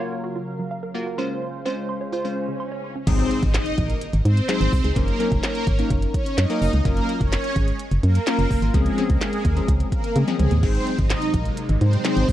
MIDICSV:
0, 0, Header, 1, 8, 480
1, 0, Start_track
1, 0, Key_signature, -5, "major"
1, 0, Tempo, 472441
1, 1202, Time_signature, 4, 2, 24, 8
1, 12521, End_track
2, 0, Start_track
2, 0, Title_t, "Synth arpeggio sound"
2, 0, Program_c, 0, 84
2, 2, Note_on_c, 0, 77, 86
2, 82, Note_off_c, 0, 77, 0
2, 121, Note_on_c, 0, 70, 77
2, 201, Note_off_c, 0, 70, 0
2, 242, Note_on_c, 0, 66, 92
2, 321, Note_off_c, 0, 66, 0
2, 363, Note_on_c, 0, 65, 71
2, 442, Note_off_c, 0, 65, 0
2, 602, Note_on_c, 0, 54, 71
2, 682, Note_off_c, 0, 54, 0
2, 721, Note_on_c, 0, 77, 91
2, 801, Note_off_c, 0, 77, 0
2, 842, Note_on_c, 0, 70, 81
2, 922, Note_off_c, 0, 70, 0
2, 1081, Note_on_c, 0, 65, 77
2, 1161, Note_off_c, 0, 65, 0
2, 1199, Note_on_c, 0, 84, 102
2, 1280, Note_off_c, 0, 84, 0
2, 1441, Note_on_c, 0, 65, 78
2, 1521, Note_off_c, 0, 65, 0
2, 1681, Note_on_c, 0, 60, 79
2, 1761, Note_off_c, 0, 60, 0
2, 1921, Note_on_c, 0, 84, 88
2, 2001, Note_off_c, 0, 84, 0
2, 2041, Note_on_c, 0, 73, 76
2, 2121, Note_off_c, 0, 73, 0
2, 2161, Note_on_c, 0, 65, 96
2, 2241, Note_off_c, 0, 65, 0
2, 2282, Note_on_c, 0, 61, 77
2, 2361, Note_off_c, 0, 61, 0
2, 2523, Note_on_c, 0, 49, 72
2, 2602, Note_off_c, 0, 49, 0
2, 2641, Note_on_c, 0, 84, 91
2, 2721, Note_off_c, 0, 84, 0
2, 2762, Note_on_c, 0, 73, 80
2, 2841, Note_off_c, 0, 73, 0
2, 3003, Note_on_c, 0, 61, 76
2, 3082, Note_off_c, 0, 61, 0
2, 12521, End_track
3, 0, Start_track
3, 0, Title_t, "Synth pluck"
3, 0, Program_c, 1, 84
3, 0, Note_on_c, 1, 58, 100
3, 0, Note_on_c, 1, 65, 97
3, 0, Note_on_c, 1, 66, 94
3, 0, Note_on_c, 1, 73, 109
3, 320, Note_off_c, 1, 58, 0
3, 321, Note_off_c, 1, 65, 0
3, 322, Note_off_c, 1, 66, 0
3, 322, Note_off_c, 1, 73, 0
3, 958, Note_on_c, 1, 58, 86
3, 961, Note_on_c, 1, 65, 82
3, 963, Note_on_c, 1, 66, 83
3, 964, Note_on_c, 1, 70, 95
3, 1070, Note_off_c, 1, 58, 0
3, 1071, Note_off_c, 1, 65, 0
3, 1072, Note_off_c, 1, 66, 0
3, 1073, Note_off_c, 1, 70, 0
3, 1199, Note_on_c, 1, 56, 95
3, 1201, Note_on_c, 1, 61, 88
3, 1203, Note_on_c, 1, 65, 86
3, 1204, Note_on_c, 1, 72, 105
3, 1420, Note_off_c, 1, 56, 0
3, 1421, Note_off_c, 1, 61, 0
3, 1422, Note_off_c, 1, 65, 0
3, 1423, Note_off_c, 1, 72, 0
3, 1679, Note_on_c, 1, 56, 95
3, 1681, Note_on_c, 1, 61, 93
3, 1683, Note_on_c, 1, 65, 91
3, 1684, Note_on_c, 1, 72, 109
3, 1900, Note_off_c, 1, 56, 0
3, 1901, Note_off_c, 1, 61, 0
3, 1902, Note_off_c, 1, 65, 0
3, 1902, Note_off_c, 1, 72, 0
3, 2159, Note_on_c, 1, 65, 89
3, 2165, Note_on_c, 1, 72, 94
3, 2215, Note_off_c, 1, 65, 0
3, 2218, Note_off_c, 1, 72, 0
3, 2280, Note_on_c, 1, 56, 82
3, 2282, Note_on_c, 1, 61, 77
3, 2283, Note_on_c, 1, 65, 77
3, 2285, Note_on_c, 1, 72, 96
3, 2665, Note_off_c, 1, 56, 0
3, 2666, Note_off_c, 1, 61, 0
3, 2667, Note_off_c, 1, 65, 0
3, 2668, Note_off_c, 1, 72, 0
3, 3118, Note_on_c, 1, 54, 89
3, 3119, Note_on_c, 1, 56, 84
3, 3121, Note_on_c, 1, 60, 77
3, 3122, Note_on_c, 1, 63, 82
3, 3123, Note_on_c, 1, 68, 97
3, 3559, Note_off_c, 1, 54, 0
3, 3560, Note_off_c, 1, 56, 0
3, 3561, Note_off_c, 1, 60, 0
3, 3561, Note_off_c, 1, 63, 0
3, 3562, Note_off_c, 1, 68, 0
3, 4559, Note_on_c, 1, 54, 80
3, 4560, Note_on_c, 1, 56, 74
3, 4561, Note_on_c, 1, 60, 77
3, 4562, Note_on_c, 1, 63, 76
3, 4564, Note_on_c, 1, 68, 87
3, 4725, Note_off_c, 1, 54, 0
3, 4726, Note_off_c, 1, 56, 0
3, 4726, Note_off_c, 1, 60, 0
3, 4727, Note_off_c, 1, 63, 0
3, 4727, Note_off_c, 1, 68, 0
3, 4920, Note_on_c, 1, 63, 89
3, 4925, Note_on_c, 1, 68, 101
3, 4976, Note_off_c, 1, 63, 0
3, 4978, Note_off_c, 1, 68, 0
3, 5040, Note_on_c, 1, 54, 86
3, 5041, Note_on_c, 1, 58, 82
3, 5042, Note_on_c, 1, 61, 80
3, 5044, Note_on_c, 1, 63, 79
3, 5045, Note_on_c, 1, 70, 93
3, 5151, Note_off_c, 1, 54, 0
3, 5151, Note_off_c, 1, 58, 0
3, 5152, Note_off_c, 1, 61, 0
3, 5153, Note_off_c, 1, 63, 0
3, 5153, Note_off_c, 1, 70, 0
3, 5279, Note_on_c, 1, 54, 85
3, 5281, Note_on_c, 1, 58, 77
3, 5282, Note_on_c, 1, 61, 75
3, 5283, Note_on_c, 1, 63, 75
3, 5284, Note_on_c, 1, 70, 91
3, 5555, Note_off_c, 1, 54, 0
3, 5556, Note_off_c, 1, 58, 0
3, 5557, Note_off_c, 1, 61, 0
3, 5557, Note_off_c, 1, 63, 0
3, 5558, Note_off_c, 1, 70, 0
3, 5880, Note_on_c, 1, 54, 83
3, 5881, Note_on_c, 1, 58, 74
3, 5882, Note_on_c, 1, 61, 69
3, 5883, Note_on_c, 1, 63, 75
3, 5886, Note_on_c, 1, 70, 87
3, 6210, Note_off_c, 1, 54, 0
3, 6211, Note_off_c, 1, 58, 0
3, 6212, Note_off_c, 1, 61, 0
3, 6212, Note_off_c, 1, 63, 0
3, 6213, Note_off_c, 1, 70, 0
3, 6601, Note_on_c, 1, 54, 91
3, 6602, Note_on_c, 1, 58, 79
3, 6604, Note_on_c, 1, 61, 82
3, 6605, Note_on_c, 1, 63, 80
3, 6606, Note_on_c, 1, 70, 101
3, 6766, Note_off_c, 1, 54, 0
3, 6767, Note_off_c, 1, 58, 0
3, 6768, Note_off_c, 1, 61, 0
3, 6768, Note_off_c, 1, 63, 0
3, 6769, Note_off_c, 1, 70, 0
3, 6962, Note_on_c, 1, 54, 91
3, 6963, Note_on_c, 1, 58, 82
3, 6965, Note_on_c, 1, 61, 82
3, 6965, Note_on_c, 1, 65, 83
3, 6967, Note_on_c, 1, 70, 94
3, 7401, Note_off_c, 1, 54, 0
3, 7402, Note_off_c, 1, 58, 0
3, 7403, Note_off_c, 1, 61, 0
3, 7403, Note_off_c, 1, 65, 0
3, 7404, Note_off_c, 1, 70, 0
3, 8400, Note_on_c, 1, 54, 78
3, 8402, Note_on_c, 1, 58, 74
3, 8403, Note_on_c, 1, 61, 78
3, 8404, Note_on_c, 1, 65, 73
3, 8405, Note_on_c, 1, 70, 88
3, 8566, Note_off_c, 1, 54, 0
3, 8567, Note_off_c, 1, 58, 0
3, 8567, Note_off_c, 1, 61, 0
3, 8568, Note_off_c, 1, 65, 0
3, 8568, Note_off_c, 1, 70, 0
3, 8760, Note_on_c, 1, 65, 87
3, 8766, Note_on_c, 1, 70, 96
3, 8816, Note_off_c, 1, 65, 0
3, 8819, Note_off_c, 1, 70, 0
3, 8881, Note_on_c, 1, 53, 88
3, 8882, Note_on_c, 1, 56, 77
3, 8884, Note_on_c, 1, 60, 81
3, 8885, Note_on_c, 1, 61, 80
3, 8886, Note_on_c, 1, 68, 91
3, 8991, Note_off_c, 1, 53, 0
3, 8992, Note_off_c, 1, 56, 0
3, 8992, Note_off_c, 1, 60, 0
3, 8993, Note_off_c, 1, 61, 0
3, 8994, Note_off_c, 1, 68, 0
3, 9121, Note_on_c, 1, 53, 84
3, 9122, Note_on_c, 1, 56, 76
3, 9123, Note_on_c, 1, 60, 79
3, 9124, Note_on_c, 1, 61, 79
3, 9126, Note_on_c, 1, 68, 97
3, 9396, Note_off_c, 1, 53, 0
3, 9396, Note_off_c, 1, 56, 0
3, 9397, Note_off_c, 1, 60, 0
3, 9398, Note_off_c, 1, 61, 0
3, 9399, Note_off_c, 1, 68, 0
3, 9720, Note_on_c, 1, 53, 81
3, 9720, Note_on_c, 1, 56, 70
3, 9722, Note_on_c, 1, 60, 72
3, 9724, Note_on_c, 1, 61, 73
3, 9724, Note_on_c, 1, 68, 88
3, 10050, Note_off_c, 1, 53, 0
3, 10051, Note_off_c, 1, 56, 0
3, 10051, Note_off_c, 1, 60, 0
3, 10052, Note_off_c, 1, 61, 0
3, 10053, Note_off_c, 1, 68, 0
3, 10439, Note_on_c, 1, 53, 87
3, 10441, Note_on_c, 1, 56, 83
3, 10442, Note_on_c, 1, 60, 85
3, 10443, Note_on_c, 1, 61, 85
3, 10444, Note_on_c, 1, 68, 98
3, 10605, Note_off_c, 1, 53, 0
3, 10606, Note_off_c, 1, 56, 0
3, 10607, Note_off_c, 1, 60, 0
3, 10607, Note_off_c, 1, 61, 0
3, 10608, Note_off_c, 1, 68, 0
3, 10800, Note_on_c, 1, 54, 89
3, 10801, Note_on_c, 1, 56, 80
3, 10802, Note_on_c, 1, 60, 83
3, 10803, Note_on_c, 1, 63, 82
3, 10805, Note_on_c, 1, 68, 101
3, 11240, Note_off_c, 1, 54, 0
3, 11241, Note_off_c, 1, 56, 0
3, 11241, Note_off_c, 1, 60, 0
3, 11242, Note_off_c, 1, 63, 0
3, 11243, Note_off_c, 1, 68, 0
3, 12239, Note_on_c, 1, 54, 83
3, 12240, Note_on_c, 1, 56, 73
3, 12242, Note_on_c, 1, 60, 75
3, 12243, Note_on_c, 1, 63, 73
3, 12244, Note_on_c, 1, 68, 90
3, 12405, Note_off_c, 1, 54, 0
3, 12406, Note_off_c, 1, 56, 0
3, 12406, Note_off_c, 1, 60, 0
3, 12407, Note_off_c, 1, 63, 0
3, 12408, Note_off_c, 1, 68, 0
3, 12521, End_track
4, 0, Start_track
4, 0, Title_t, "Analog synth pad"
4, 0, Program_c, 2, 89
4, 0, Note_on_c, 2, 49, 72
4, 0, Note_on_c, 2, 54, 68
4, 0, Note_on_c, 2, 70, 87
4, 0, Note_on_c, 2, 77, 73
4, 1164, Note_off_c, 2, 54, 0
4, 1183, Note_off_c, 2, 70, 0
4, 1201, Note_on_c, 2, 56, 73
4, 1201, Note_on_c, 2, 72, 85
4, 3082, Note_off_c, 2, 49, 0
4, 3083, Note_off_c, 2, 77, 0
4, 3102, Note_off_c, 2, 56, 0
4, 3102, Note_off_c, 2, 72, 0
4, 10801, Note_on_c, 2, 54, 77
4, 10801, Note_on_c, 2, 56, 80
4, 10802, Note_on_c, 2, 48, 85
4, 10802, Note_on_c, 2, 63, 93
4, 12521, Note_off_c, 2, 48, 0
4, 12521, Note_off_c, 2, 54, 0
4, 12521, Note_off_c, 2, 56, 0
4, 12521, Note_off_c, 2, 63, 0
4, 12521, End_track
5, 0, Start_track
5, 0, Title_t, "FM bass"
5, 0, Program_c, 3, 39
5, 3121, Note_on_c, 3, 32, 109
5, 3280, Note_off_c, 3, 32, 0
5, 3482, Note_on_c, 3, 32, 100
5, 3641, Note_off_c, 3, 32, 0
5, 3841, Note_on_c, 3, 34, 95
5, 4000, Note_off_c, 3, 34, 0
5, 4201, Note_on_c, 3, 32, 101
5, 4281, Note_off_c, 3, 32, 0
5, 4320, Note_on_c, 3, 44, 104
5, 4480, Note_off_c, 3, 44, 0
5, 4681, Note_on_c, 3, 32, 98
5, 4761, Note_off_c, 3, 32, 0
5, 4803, Note_on_c, 3, 36, 95
5, 4882, Note_off_c, 3, 36, 0
5, 4921, Note_on_c, 3, 37, 88
5, 5001, Note_off_c, 3, 37, 0
5, 5042, Note_on_c, 3, 30, 106
5, 5201, Note_off_c, 3, 30, 0
5, 5403, Note_on_c, 3, 30, 103
5, 5482, Note_off_c, 3, 30, 0
5, 5762, Note_on_c, 3, 32, 92
5, 5921, Note_off_c, 3, 32, 0
5, 6000, Note_on_c, 3, 30, 100
5, 6159, Note_off_c, 3, 30, 0
5, 6482, Note_on_c, 3, 42, 107
5, 6561, Note_off_c, 3, 42, 0
5, 6723, Note_on_c, 3, 30, 91
5, 6802, Note_off_c, 3, 30, 0
5, 6843, Note_on_c, 3, 37, 89
5, 6922, Note_off_c, 3, 37, 0
5, 6962, Note_on_c, 3, 30, 104
5, 7121, Note_off_c, 3, 30, 0
5, 7324, Note_on_c, 3, 30, 101
5, 7482, Note_off_c, 3, 30, 0
5, 7683, Note_on_c, 3, 32, 100
5, 7841, Note_off_c, 3, 32, 0
5, 8042, Note_on_c, 3, 30, 105
5, 8122, Note_off_c, 3, 30, 0
5, 8163, Note_on_c, 3, 42, 106
5, 8321, Note_off_c, 3, 42, 0
5, 8521, Note_on_c, 3, 30, 94
5, 8601, Note_off_c, 3, 30, 0
5, 8644, Note_on_c, 3, 30, 94
5, 8722, Note_off_c, 3, 30, 0
5, 8761, Note_on_c, 3, 32, 98
5, 8841, Note_off_c, 3, 32, 0
5, 8882, Note_on_c, 3, 37, 108
5, 9041, Note_off_c, 3, 37, 0
5, 9244, Note_on_c, 3, 37, 95
5, 9323, Note_off_c, 3, 37, 0
5, 9602, Note_on_c, 3, 39, 96
5, 9761, Note_off_c, 3, 39, 0
5, 9840, Note_on_c, 3, 37, 96
5, 9999, Note_off_c, 3, 37, 0
5, 10321, Note_on_c, 3, 49, 99
5, 10401, Note_off_c, 3, 49, 0
5, 10563, Note_on_c, 3, 37, 97
5, 10642, Note_off_c, 3, 37, 0
5, 10682, Note_on_c, 3, 39, 83
5, 10800, Note_on_c, 3, 32, 107
5, 10816, Note_off_c, 3, 39, 0
5, 10960, Note_off_c, 3, 32, 0
5, 11163, Note_on_c, 3, 32, 100
5, 11321, Note_off_c, 3, 32, 0
5, 11521, Note_on_c, 3, 34, 98
5, 11680, Note_off_c, 3, 34, 0
5, 11881, Note_on_c, 3, 32, 101
5, 11961, Note_off_c, 3, 32, 0
5, 12002, Note_on_c, 3, 44, 106
5, 12161, Note_off_c, 3, 44, 0
5, 12362, Note_on_c, 3, 32, 95
5, 12441, Note_off_c, 3, 32, 0
5, 12482, Note_on_c, 3, 36, 94
5, 12521, Note_off_c, 3, 36, 0
5, 12521, End_track
6, 0, Start_track
6, 0, Title_t, "Impact"
6, 0, Program_c, 4, 103
6, 3121, Note_on_c, 4, 60, 90
6, 5041, Note_off_c, 4, 60, 0
6, 12521, End_track
7, 0, Start_track
7, 0, Title_t, "Swell"
7, 0, Program_c, 5, 103
7, 0, Note_on_c, 5, 60, 83
7, 3121, Note_off_c, 5, 60, 0
7, 12521, End_track
8, 0, Start_track
8, 0, Title_t, "Drums"
8, 3120, Note_on_c, 9, 42, 111
8, 3120, Note_on_c, 9, 49, 111
8, 3121, Note_on_c, 9, 36, 127
8, 3222, Note_off_c, 9, 36, 0
8, 3222, Note_off_c, 9, 42, 0
8, 3222, Note_off_c, 9, 49, 0
8, 3240, Note_on_c, 9, 42, 53
8, 3342, Note_off_c, 9, 42, 0
8, 3363, Note_on_c, 9, 42, 75
8, 3464, Note_off_c, 9, 42, 0
8, 3481, Note_on_c, 9, 42, 50
8, 3482, Note_on_c, 9, 36, 93
8, 3583, Note_off_c, 9, 42, 0
8, 3584, Note_off_c, 9, 36, 0
8, 3600, Note_on_c, 9, 38, 91
8, 3600, Note_on_c, 9, 42, 95
8, 3603, Note_on_c, 9, 39, 112
8, 3702, Note_off_c, 9, 38, 0
8, 3702, Note_off_c, 9, 42, 0
8, 3704, Note_off_c, 9, 39, 0
8, 3718, Note_on_c, 9, 42, 55
8, 3819, Note_off_c, 9, 42, 0
8, 3839, Note_on_c, 9, 42, 76
8, 3841, Note_on_c, 9, 36, 95
8, 3940, Note_off_c, 9, 42, 0
8, 3943, Note_off_c, 9, 36, 0
8, 3960, Note_on_c, 9, 42, 56
8, 4061, Note_off_c, 9, 42, 0
8, 4079, Note_on_c, 9, 42, 97
8, 4181, Note_off_c, 9, 42, 0
8, 4200, Note_on_c, 9, 42, 58
8, 4302, Note_off_c, 9, 42, 0
8, 4322, Note_on_c, 9, 42, 74
8, 4424, Note_off_c, 9, 42, 0
8, 4443, Note_on_c, 9, 42, 71
8, 4544, Note_off_c, 9, 42, 0
8, 4561, Note_on_c, 9, 38, 104
8, 4561, Note_on_c, 9, 42, 108
8, 4563, Note_on_c, 9, 39, 127
8, 4662, Note_off_c, 9, 38, 0
8, 4663, Note_off_c, 9, 42, 0
8, 4664, Note_off_c, 9, 39, 0
8, 4684, Note_on_c, 9, 42, 56
8, 4785, Note_off_c, 9, 42, 0
8, 4803, Note_on_c, 9, 36, 101
8, 4804, Note_on_c, 9, 46, 75
8, 4904, Note_off_c, 9, 36, 0
8, 4906, Note_off_c, 9, 46, 0
8, 4921, Note_on_c, 9, 42, 50
8, 5022, Note_off_c, 9, 42, 0
8, 5042, Note_on_c, 9, 36, 127
8, 5042, Note_on_c, 9, 42, 108
8, 5143, Note_off_c, 9, 36, 0
8, 5144, Note_off_c, 9, 42, 0
8, 5161, Note_on_c, 9, 42, 51
8, 5263, Note_off_c, 9, 42, 0
8, 5284, Note_on_c, 9, 42, 75
8, 5386, Note_off_c, 9, 42, 0
8, 5403, Note_on_c, 9, 36, 96
8, 5403, Note_on_c, 9, 42, 53
8, 5504, Note_off_c, 9, 42, 0
8, 5505, Note_off_c, 9, 36, 0
8, 5522, Note_on_c, 9, 38, 87
8, 5522, Note_on_c, 9, 42, 91
8, 5524, Note_on_c, 9, 39, 112
8, 5623, Note_off_c, 9, 38, 0
8, 5623, Note_off_c, 9, 42, 0
8, 5626, Note_off_c, 9, 39, 0
8, 5639, Note_on_c, 9, 42, 59
8, 5741, Note_off_c, 9, 42, 0
8, 5761, Note_on_c, 9, 42, 79
8, 5762, Note_on_c, 9, 36, 94
8, 5862, Note_off_c, 9, 42, 0
8, 5864, Note_off_c, 9, 36, 0
8, 5880, Note_on_c, 9, 42, 56
8, 5982, Note_off_c, 9, 42, 0
8, 5999, Note_on_c, 9, 42, 104
8, 6000, Note_on_c, 9, 36, 101
8, 6101, Note_off_c, 9, 42, 0
8, 6102, Note_off_c, 9, 36, 0
8, 6120, Note_on_c, 9, 42, 58
8, 6222, Note_off_c, 9, 42, 0
8, 6241, Note_on_c, 9, 36, 97
8, 6242, Note_on_c, 9, 42, 73
8, 6342, Note_off_c, 9, 36, 0
8, 6344, Note_off_c, 9, 42, 0
8, 6363, Note_on_c, 9, 42, 71
8, 6465, Note_off_c, 9, 42, 0
8, 6480, Note_on_c, 9, 38, 110
8, 6481, Note_on_c, 9, 42, 111
8, 6482, Note_on_c, 9, 39, 125
8, 6582, Note_off_c, 9, 38, 0
8, 6583, Note_off_c, 9, 42, 0
8, 6584, Note_off_c, 9, 39, 0
8, 6603, Note_on_c, 9, 42, 55
8, 6705, Note_off_c, 9, 42, 0
8, 6723, Note_on_c, 9, 46, 78
8, 6825, Note_off_c, 9, 46, 0
8, 6841, Note_on_c, 9, 42, 53
8, 6942, Note_off_c, 9, 42, 0
8, 6962, Note_on_c, 9, 36, 127
8, 6962, Note_on_c, 9, 42, 106
8, 7064, Note_off_c, 9, 36, 0
8, 7064, Note_off_c, 9, 42, 0
8, 7081, Note_on_c, 9, 42, 51
8, 7182, Note_off_c, 9, 42, 0
8, 7205, Note_on_c, 9, 42, 77
8, 7306, Note_off_c, 9, 42, 0
8, 7323, Note_on_c, 9, 42, 50
8, 7324, Note_on_c, 9, 36, 99
8, 7425, Note_off_c, 9, 36, 0
8, 7425, Note_off_c, 9, 42, 0
8, 7442, Note_on_c, 9, 38, 87
8, 7442, Note_on_c, 9, 42, 91
8, 7444, Note_on_c, 9, 39, 114
8, 7543, Note_off_c, 9, 42, 0
8, 7544, Note_off_c, 9, 38, 0
8, 7546, Note_off_c, 9, 39, 0
8, 7559, Note_on_c, 9, 42, 56
8, 7661, Note_off_c, 9, 42, 0
8, 7681, Note_on_c, 9, 42, 77
8, 7683, Note_on_c, 9, 36, 92
8, 7782, Note_off_c, 9, 42, 0
8, 7784, Note_off_c, 9, 36, 0
8, 7801, Note_on_c, 9, 42, 53
8, 7902, Note_off_c, 9, 42, 0
8, 7920, Note_on_c, 9, 42, 101
8, 8021, Note_off_c, 9, 42, 0
8, 8041, Note_on_c, 9, 42, 60
8, 8143, Note_off_c, 9, 42, 0
8, 8163, Note_on_c, 9, 42, 70
8, 8264, Note_off_c, 9, 42, 0
8, 8283, Note_on_c, 9, 42, 76
8, 8385, Note_off_c, 9, 42, 0
8, 8401, Note_on_c, 9, 38, 111
8, 8402, Note_on_c, 9, 42, 113
8, 8403, Note_on_c, 9, 39, 127
8, 8503, Note_off_c, 9, 38, 0
8, 8504, Note_off_c, 9, 42, 0
8, 8505, Note_off_c, 9, 39, 0
8, 8524, Note_on_c, 9, 42, 56
8, 8625, Note_off_c, 9, 42, 0
8, 8643, Note_on_c, 9, 36, 99
8, 8643, Note_on_c, 9, 46, 76
8, 8745, Note_off_c, 9, 36, 0
8, 8745, Note_off_c, 9, 46, 0
8, 8761, Note_on_c, 9, 42, 50
8, 8862, Note_off_c, 9, 42, 0
8, 8882, Note_on_c, 9, 36, 127
8, 8882, Note_on_c, 9, 42, 114
8, 8984, Note_off_c, 9, 36, 0
8, 8984, Note_off_c, 9, 42, 0
8, 9001, Note_on_c, 9, 42, 55
8, 9103, Note_off_c, 9, 42, 0
8, 9124, Note_on_c, 9, 42, 78
8, 9225, Note_off_c, 9, 42, 0
8, 9242, Note_on_c, 9, 42, 52
8, 9243, Note_on_c, 9, 36, 99
8, 9344, Note_off_c, 9, 42, 0
8, 9345, Note_off_c, 9, 36, 0
8, 9361, Note_on_c, 9, 38, 92
8, 9361, Note_on_c, 9, 42, 95
8, 9363, Note_on_c, 9, 39, 106
8, 9463, Note_off_c, 9, 38, 0
8, 9463, Note_off_c, 9, 42, 0
8, 9465, Note_off_c, 9, 39, 0
8, 9479, Note_on_c, 9, 42, 56
8, 9580, Note_off_c, 9, 42, 0
8, 9599, Note_on_c, 9, 42, 76
8, 9602, Note_on_c, 9, 36, 93
8, 9701, Note_off_c, 9, 42, 0
8, 9704, Note_off_c, 9, 36, 0
8, 9720, Note_on_c, 9, 42, 52
8, 9822, Note_off_c, 9, 42, 0
8, 9839, Note_on_c, 9, 42, 102
8, 9840, Note_on_c, 9, 36, 105
8, 9941, Note_off_c, 9, 36, 0
8, 9941, Note_off_c, 9, 42, 0
8, 9960, Note_on_c, 9, 42, 57
8, 10061, Note_off_c, 9, 42, 0
8, 10080, Note_on_c, 9, 36, 93
8, 10080, Note_on_c, 9, 42, 70
8, 10182, Note_off_c, 9, 36, 0
8, 10182, Note_off_c, 9, 42, 0
8, 10201, Note_on_c, 9, 42, 69
8, 10303, Note_off_c, 9, 42, 0
8, 10320, Note_on_c, 9, 42, 110
8, 10320, Note_on_c, 9, 48, 71
8, 10421, Note_off_c, 9, 42, 0
8, 10422, Note_off_c, 9, 48, 0
8, 10440, Note_on_c, 9, 47, 73
8, 10442, Note_on_c, 9, 42, 56
8, 10542, Note_off_c, 9, 47, 0
8, 10543, Note_off_c, 9, 42, 0
8, 10560, Note_on_c, 9, 45, 99
8, 10562, Note_on_c, 9, 42, 76
8, 10662, Note_off_c, 9, 45, 0
8, 10663, Note_off_c, 9, 42, 0
8, 10679, Note_on_c, 9, 42, 50
8, 10680, Note_on_c, 9, 43, 106
8, 10780, Note_off_c, 9, 42, 0
8, 10782, Note_off_c, 9, 43, 0
8, 10800, Note_on_c, 9, 49, 85
8, 10801, Note_on_c, 9, 36, 127
8, 10902, Note_off_c, 9, 36, 0
8, 10902, Note_off_c, 9, 49, 0
8, 10919, Note_on_c, 9, 42, 52
8, 11020, Note_off_c, 9, 42, 0
8, 11042, Note_on_c, 9, 42, 71
8, 11144, Note_off_c, 9, 42, 0
8, 11161, Note_on_c, 9, 42, 51
8, 11162, Note_on_c, 9, 36, 97
8, 11262, Note_off_c, 9, 42, 0
8, 11264, Note_off_c, 9, 36, 0
8, 11280, Note_on_c, 9, 38, 91
8, 11280, Note_on_c, 9, 42, 91
8, 11282, Note_on_c, 9, 39, 112
8, 11381, Note_off_c, 9, 42, 0
8, 11382, Note_off_c, 9, 38, 0
8, 11384, Note_off_c, 9, 39, 0
8, 11398, Note_on_c, 9, 42, 55
8, 11499, Note_off_c, 9, 42, 0
8, 11519, Note_on_c, 9, 42, 79
8, 11521, Note_on_c, 9, 36, 92
8, 11621, Note_off_c, 9, 42, 0
8, 11623, Note_off_c, 9, 36, 0
8, 11638, Note_on_c, 9, 42, 53
8, 11740, Note_off_c, 9, 42, 0
8, 11758, Note_on_c, 9, 42, 105
8, 11859, Note_off_c, 9, 42, 0
8, 11879, Note_on_c, 9, 42, 57
8, 11981, Note_off_c, 9, 42, 0
8, 12001, Note_on_c, 9, 42, 74
8, 12102, Note_off_c, 9, 42, 0
8, 12122, Note_on_c, 9, 42, 69
8, 12223, Note_off_c, 9, 42, 0
8, 12238, Note_on_c, 9, 38, 108
8, 12239, Note_on_c, 9, 42, 108
8, 12241, Note_on_c, 9, 39, 127
8, 12340, Note_off_c, 9, 38, 0
8, 12341, Note_off_c, 9, 42, 0
8, 12342, Note_off_c, 9, 39, 0
8, 12362, Note_on_c, 9, 42, 55
8, 12463, Note_off_c, 9, 42, 0
8, 12482, Note_on_c, 9, 36, 101
8, 12482, Note_on_c, 9, 46, 76
8, 12521, Note_off_c, 9, 36, 0
8, 12521, Note_off_c, 9, 46, 0
8, 12521, End_track
0, 0, End_of_file